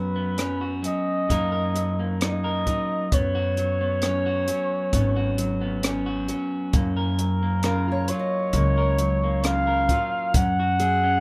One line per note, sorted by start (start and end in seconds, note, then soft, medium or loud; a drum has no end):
0.00 0.37 F#2 medium
0.00 0.85 F#2 medium
0.00 0.82 F#3 soft
0.00 0.15 B3 medium
0.00 0.61 F#4 medium
0.00 0.81 B4 medium
0.16 1.29 B3 soft
0.37 1.29 F#2 medium
0.37 0.82 C#4 medium
0.37 cross-stick medium
0.37 closed hi-hat medium
0.61 1.31 F#4 medium
0.83 1.29 F#3 medium
0.83 1.30 C#4 soft
0.83 2.18 D#5 loud
0.83 closed hi-hat soft
1.29 2.21 F#2 medium
1.29 2.67 F#2 medium
1.29 1.74 F#3 soft
1.29 1.98 A#3 medium
1.29 2.21 D#4 medium
1.29 1.51 A#4 medium
1.29 kick medium
1.29 closed hi-hat medium
1.52 2.43 A#4 medium
1.75 2.66 F#3 medium
1.75 closed hi-hat soft
1.99 3.07 A#3 soft
2.21 3.12 F#2 medium
2.21 2.66 D#4 soft
2.21 3.15 D#5 loud
2.21 cross-stick medium
2.21 closed hi-hat medium
2.44 3.07 A#4 medium
2.67 3.57 F#3 medium
2.67 3.07 D#4 soft
2.67 kick soft
2.67 closed hi-hat soft
3.12 4.49 F#2 medium
3.12 4.03 F#2 medium
3.12 3.80 B3 medium
3.12 6.30 C#5 medium
3.12 kick medium
3.12 closed hi-hat medium
3.35 4.26 F#4 medium
3.57 4.48 F#3 medium
3.57 closed hi-hat soft
3.81 4.93 B3 medium
4.02 4.92 F#2 medium
4.02 4.49 C#4 medium
4.02 cross-stick medium
4.02 closed hi-hat medium
4.26 5.16 F#4 medium
4.48 5.38 F#3 medium
4.48 5.84 C#4 soft
4.48 closed hi-hat soft
4.93 6.30 G#1 medium
4.93 5.82 F#2 medium
4.93 5.60 B3 soft
4.93 kick medium
4.93 closed hi-hat medium
5.16 6.06 F#4 medium
5.38 6.28 F#3 medium
5.38 closed hi-hat medium
5.61 6.69 B3 medium
5.83 6.73 F#2 medium
5.83 6.29 C#4 medium
5.83 cross-stick medium
5.83 closed hi-hat medium
6.06 6.96 F#4 medium
6.28 7.19 F#3 medium
6.28 7.65 C#4 medium
6.28 closed hi-hat soft
6.73 8.54 F#2 medium
6.73 8.10 F#2 loud
6.73 7.42 A#3 medium
6.73 kick medium
6.73 closed hi-hat medium
6.97 8.77 A#4 medium
7.19 8.10 F#3 medium
7.19 8.10 A#4 medium
7.19 closed hi-hat soft
7.43 8.55 A#3 medium
7.63 8.10 C#3 medium
7.63 7.87 F4 soft
7.63 9.48 A#4 medium
7.63 cross-stick medium
7.63 closed hi-hat medium
7.88 8.09 F4 soft
7.88 9.73 C#5 soft
8.08 8.99 F#3 medium
8.08 9.43 F4 soft
8.08 9.44 C#5 medium
8.08 closed hi-hat soft
8.19 9.99 D#5 soft
8.53 9.90 C#2 medium
8.53 10.35 F#2 medium
8.53 9.23 A#3 medium
8.53 kick medium
8.53 closed hi-hat medium
8.78 9.67 A#4 medium
8.98 9.89 F#3 medium
8.98 closed hi-hat soft
9.24 10.37 A#3 medium
9.44 9.90 C#3 medium
9.44 9.89 F4 medium
9.44 10.31 F5 loud
9.44 cross-stick medium
9.44 closed hi-hat medium
9.67 10.59 A#4 medium
9.89 10.79 F#3 medium
9.89 10.30 F4 medium
9.89 kick medium
9.89 closed hi-hat soft
10.34 11.20 F#2 medium
10.34 11.03 C#4 medium
10.34 11.20 F#5 loud
10.34 kick medium
10.34 closed hi-hat medium
10.60 11.20 F#4 medium
10.80 11.20 F#3 medium
10.80 11.20 G#4 medium
10.80 closed hi-hat soft
11.04 11.20 C#4 medium